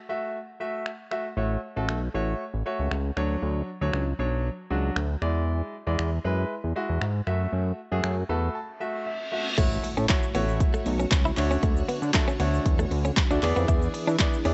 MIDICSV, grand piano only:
0, 0, Header, 1, 2, 480
1, 0, Start_track
1, 0, Key_signature, 3, "major"
1, 0, Tempo, 512821
1, 1285, Time_signature, 4, 2, 24, 8
1, 13608, End_track
2, 0, Start_track
2, 0, Title_t, "Grand piano"
2, 0, Program_c, 0, 0
2, 82, Note_on_c, 0, 57, 78
2, 85, Note_on_c, 0, 66, 76
2, 87, Note_on_c, 0, 76, 88
2, 340, Note_off_c, 0, 57, 0
2, 341, Note_off_c, 0, 66, 0
2, 342, Note_off_c, 0, 76, 0
2, 562, Note_on_c, 0, 57, 82
2, 564, Note_on_c, 0, 66, 73
2, 567, Note_on_c, 0, 76, 92
2, 820, Note_off_c, 0, 57, 0
2, 821, Note_off_c, 0, 66, 0
2, 822, Note_off_c, 0, 76, 0
2, 1043, Note_on_c, 0, 57, 78
2, 1045, Note_on_c, 0, 66, 71
2, 1048, Note_on_c, 0, 76, 86
2, 1178, Note_off_c, 0, 57, 0
2, 1180, Note_off_c, 0, 66, 0
2, 1181, Note_off_c, 0, 76, 0
2, 1282, Note_on_c, 0, 57, 81
2, 1285, Note_on_c, 0, 66, 72
2, 1287, Note_on_c, 0, 73, 83
2, 1478, Note_off_c, 0, 57, 0
2, 1479, Note_off_c, 0, 66, 0
2, 1481, Note_off_c, 0, 73, 0
2, 1649, Note_on_c, 0, 57, 85
2, 1652, Note_on_c, 0, 66, 74
2, 1654, Note_on_c, 0, 69, 91
2, 1839, Note_off_c, 0, 57, 0
2, 1841, Note_off_c, 0, 66, 0
2, 1842, Note_off_c, 0, 69, 0
2, 2002, Note_on_c, 0, 57, 80
2, 2005, Note_on_c, 0, 66, 75
2, 2007, Note_on_c, 0, 73, 91
2, 2260, Note_off_c, 0, 57, 0
2, 2261, Note_off_c, 0, 66, 0
2, 2262, Note_off_c, 0, 73, 0
2, 2483, Note_on_c, 0, 57, 83
2, 2485, Note_on_c, 0, 66, 74
2, 2488, Note_on_c, 0, 73, 87
2, 2740, Note_off_c, 0, 57, 0
2, 2741, Note_off_c, 0, 66, 0
2, 2743, Note_off_c, 0, 73, 0
2, 2963, Note_on_c, 0, 54, 85
2, 2965, Note_on_c, 0, 62, 80
2, 2967, Note_on_c, 0, 73, 92
2, 3444, Note_off_c, 0, 54, 0
2, 3445, Note_off_c, 0, 62, 0
2, 3446, Note_off_c, 0, 73, 0
2, 3570, Note_on_c, 0, 54, 81
2, 3572, Note_on_c, 0, 62, 76
2, 3575, Note_on_c, 0, 73, 92
2, 3760, Note_off_c, 0, 54, 0
2, 3761, Note_off_c, 0, 62, 0
2, 3762, Note_off_c, 0, 73, 0
2, 3923, Note_on_c, 0, 54, 81
2, 3925, Note_on_c, 0, 62, 74
2, 3927, Note_on_c, 0, 73, 89
2, 4180, Note_off_c, 0, 54, 0
2, 4181, Note_off_c, 0, 62, 0
2, 4182, Note_off_c, 0, 73, 0
2, 4403, Note_on_c, 0, 54, 86
2, 4406, Note_on_c, 0, 62, 77
2, 4408, Note_on_c, 0, 66, 88
2, 4660, Note_off_c, 0, 54, 0
2, 4662, Note_off_c, 0, 62, 0
2, 4663, Note_off_c, 0, 66, 0
2, 4883, Note_on_c, 0, 56, 82
2, 4886, Note_on_c, 0, 64, 73
2, 4888, Note_on_c, 0, 74, 93
2, 5364, Note_off_c, 0, 56, 0
2, 5366, Note_off_c, 0, 64, 0
2, 5367, Note_off_c, 0, 74, 0
2, 5490, Note_on_c, 0, 56, 85
2, 5492, Note_on_c, 0, 64, 76
2, 5494, Note_on_c, 0, 74, 86
2, 5680, Note_off_c, 0, 56, 0
2, 5681, Note_off_c, 0, 64, 0
2, 5682, Note_off_c, 0, 74, 0
2, 5843, Note_on_c, 0, 56, 84
2, 5845, Note_on_c, 0, 64, 76
2, 5847, Note_on_c, 0, 71, 92
2, 6100, Note_off_c, 0, 56, 0
2, 6101, Note_off_c, 0, 64, 0
2, 6102, Note_off_c, 0, 71, 0
2, 6323, Note_on_c, 0, 56, 77
2, 6325, Note_on_c, 0, 64, 78
2, 6328, Note_on_c, 0, 66, 93
2, 6580, Note_off_c, 0, 56, 0
2, 6581, Note_off_c, 0, 64, 0
2, 6583, Note_off_c, 0, 66, 0
2, 6803, Note_on_c, 0, 57, 84
2, 6805, Note_on_c, 0, 66, 77
2, 6807, Note_on_c, 0, 76, 92
2, 7284, Note_off_c, 0, 57, 0
2, 7285, Note_off_c, 0, 66, 0
2, 7286, Note_off_c, 0, 76, 0
2, 7410, Note_on_c, 0, 57, 83
2, 7412, Note_on_c, 0, 66, 73
2, 7415, Note_on_c, 0, 68, 92
2, 7600, Note_off_c, 0, 57, 0
2, 7601, Note_off_c, 0, 66, 0
2, 7602, Note_off_c, 0, 68, 0
2, 7763, Note_on_c, 0, 57, 83
2, 7765, Note_on_c, 0, 66, 76
2, 7765, Note_on_c, 0, 83, 72
2, 7767, Note_on_c, 0, 69, 89
2, 7988, Note_off_c, 0, 83, 0
2, 8005, Note_on_c, 0, 81, 70
2, 8020, Note_off_c, 0, 57, 0
2, 8021, Note_off_c, 0, 66, 0
2, 8022, Note_off_c, 0, 69, 0
2, 8243, Note_on_c, 0, 57, 80
2, 8245, Note_on_c, 0, 66, 76
2, 8247, Note_on_c, 0, 76, 92
2, 8452, Note_off_c, 0, 81, 0
2, 8471, Note_off_c, 0, 76, 0
2, 8485, Note_on_c, 0, 76, 72
2, 8500, Note_off_c, 0, 57, 0
2, 8501, Note_off_c, 0, 66, 0
2, 8714, Note_off_c, 0, 76, 0
2, 8723, Note_on_c, 0, 57, 78
2, 8725, Note_on_c, 0, 66, 74
2, 8728, Note_on_c, 0, 76, 85
2, 8858, Note_off_c, 0, 57, 0
2, 8860, Note_off_c, 0, 66, 0
2, 8861, Note_off_c, 0, 76, 0
2, 8963, Note_on_c, 0, 57, 88
2, 8965, Note_on_c, 0, 64, 81
2, 8966, Note_on_c, 0, 66, 82
2, 8968, Note_on_c, 0, 73, 99
2, 9220, Note_off_c, 0, 57, 0
2, 9221, Note_off_c, 0, 64, 0
2, 9222, Note_off_c, 0, 66, 0
2, 9223, Note_off_c, 0, 73, 0
2, 9443, Note_on_c, 0, 57, 93
2, 9445, Note_on_c, 0, 64, 81
2, 9447, Note_on_c, 0, 66, 81
2, 9448, Note_on_c, 0, 73, 97
2, 9579, Note_off_c, 0, 57, 0
2, 9579, Note_off_c, 0, 64, 0
2, 9580, Note_off_c, 0, 66, 0
2, 9581, Note_off_c, 0, 73, 0
2, 9683, Note_on_c, 0, 57, 87
2, 9684, Note_on_c, 0, 64, 82
2, 9686, Note_on_c, 0, 66, 81
2, 9687, Note_on_c, 0, 73, 97
2, 10196, Note_off_c, 0, 57, 0
2, 10197, Note_off_c, 0, 64, 0
2, 10198, Note_off_c, 0, 66, 0
2, 10199, Note_off_c, 0, 73, 0
2, 10643, Note_on_c, 0, 57, 92
2, 10645, Note_on_c, 0, 62, 83
2, 10646, Note_on_c, 0, 66, 86
2, 10647, Note_on_c, 0, 73, 104
2, 11226, Note_off_c, 0, 57, 0
2, 11227, Note_off_c, 0, 62, 0
2, 11227, Note_off_c, 0, 66, 0
2, 11228, Note_off_c, 0, 73, 0
2, 11363, Note_on_c, 0, 57, 89
2, 11365, Note_on_c, 0, 62, 81
2, 11366, Note_on_c, 0, 66, 77
2, 11368, Note_on_c, 0, 69, 97
2, 11499, Note_off_c, 0, 57, 0
2, 11499, Note_off_c, 0, 62, 0
2, 11500, Note_off_c, 0, 66, 0
2, 11501, Note_off_c, 0, 69, 0
2, 11603, Note_on_c, 0, 57, 90
2, 11605, Note_on_c, 0, 62, 81
2, 11607, Note_on_c, 0, 66, 82
2, 11608, Note_on_c, 0, 73, 96
2, 12053, Note_off_c, 0, 57, 0
2, 12054, Note_off_c, 0, 62, 0
2, 12055, Note_off_c, 0, 66, 0
2, 12055, Note_off_c, 0, 73, 0
2, 12450, Note_on_c, 0, 57, 87
2, 12452, Note_on_c, 0, 62, 82
2, 12453, Note_on_c, 0, 66, 78
2, 12455, Note_on_c, 0, 74, 94
2, 12553, Note_off_c, 0, 74, 0
2, 12563, Note_on_c, 0, 59, 90
2, 12564, Note_off_c, 0, 57, 0
2, 12564, Note_on_c, 0, 64, 86
2, 12565, Note_off_c, 0, 62, 0
2, 12566, Note_off_c, 0, 66, 0
2, 12566, Note_on_c, 0, 68, 87
2, 12567, Note_on_c, 0, 74, 104
2, 13146, Note_off_c, 0, 59, 0
2, 13146, Note_off_c, 0, 64, 0
2, 13147, Note_off_c, 0, 68, 0
2, 13148, Note_off_c, 0, 74, 0
2, 13283, Note_on_c, 0, 59, 88
2, 13284, Note_on_c, 0, 64, 79
2, 13286, Note_on_c, 0, 68, 84
2, 13288, Note_on_c, 0, 74, 99
2, 13418, Note_off_c, 0, 59, 0
2, 13419, Note_off_c, 0, 64, 0
2, 13420, Note_off_c, 0, 68, 0
2, 13421, Note_off_c, 0, 74, 0
2, 13523, Note_on_c, 0, 59, 89
2, 13524, Note_on_c, 0, 64, 85
2, 13526, Note_on_c, 0, 68, 80
2, 13528, Note_on_c, 0, 74, 99
2, 13608, Note_off_c, 0, 59, 0
2, 13608, Note_off_c, 0, 64, 0
2, 13608, Note_off_c, 0, 68, 0
2, 13608, Note_off_c, 0, 74, 0
2, 13608, End_track
0, 0, End_of_file